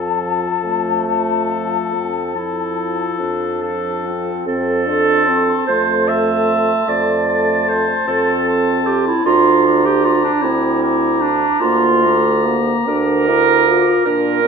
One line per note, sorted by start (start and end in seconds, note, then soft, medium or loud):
0.00 0.48 F2 medium
0.00 1.03 F3 medium
0.00 0.53 C4 soft
0.00 1.04 A4 medium
0.00 3.14 A5 medium
0.63 1.78 F2 medium
0.63 1.95 A3 medium
1.07 2.32 F3 medium
1.07 2.32 A4 medium
1.92 3.04 F2 medium
1.92 2.37 C4 medium
2.35 3.59 F3 medium
2.35 3.21 E4 medium
2.35 3.59 A4 medium
3.19 4.32 F2 medium
3.19 4.08 D4 medium
3.62 4.45 F3 medium
3.62 4.45 A4 medium
4.06 4.47 C4 medium
4.46 5.54 F2 medium
4.46 4.88 C4 medium
4.46 5.64 A4 loud
4.87 5.30 D4 medium
4.87 6.06 A5 medium
4.87 6.06 C6 medium
5.28 5.68 C4 medium
5.67 6.74 F2 medium
5.67 6.86 A3 medium
5.67 6.09 C5 loud
6.08 6.90 E5 loud
6.08 7.26 A5 medium
6.08 7.25 C6 medium
6.87 7.94 F2 medium
6.87 7.90 A3 medium
6.87 7.70 D5 medium
7.28 8.45 A5 medium
7.28 8.45 C6 medium
7.68 8.07 C5 loud
8.07 9.11 F2 medium
8.07 9.23 C4 medium
8.07 8.88 A4 loud
8.48 9.24 A5 medium
8.48 9.24 C6 medium
8.86 9.06 G4 medium
9.08 9.25 E4 medium
9.25 10.29 D2 medium
9.25 10.45 D4 medium
9.25 9.87 F4 loud
9.25 9.64 A#5 medium
9.25 9.64 D6 medium
9.65 10.81 A#5 medium
9.65 10.80 D6 medium
9.86 10.06 G4 loud
10.04 10.23 F4 loud
10.24 10.44 D4 medium
10.43 11.46 D2 medium
10.43 11.33 C4 medium
10.43 11.23 E4 medium
10.83 11.86 A#5 medium
10.83 11.76 D6 medium
11.21 11.62 D4 medium
11.60 12.73 D2 medium
11.60 12.03 A#3 medium
11.60 12.58 F4 loud
12.02 12.46 A3 medium
12.02 13.26 A#5 medium
12.02 13.26 D6 medium
12.45 12.88 A#3 medium
12.87 13.92 D2 medium
12.87 13.30 D4 medium
12.87 14.02 A#4 loud
13.28 13.69 E4 medium
13.28 14.05 A#5 medium
13.28 14.05 D6 medium
13.67 14.05 F4 medium
14.06 14.47 A#2 loud
14.06 14.44 D4 medium
14.06 14.47 A#4 loud
14.44 14.47 C4 medium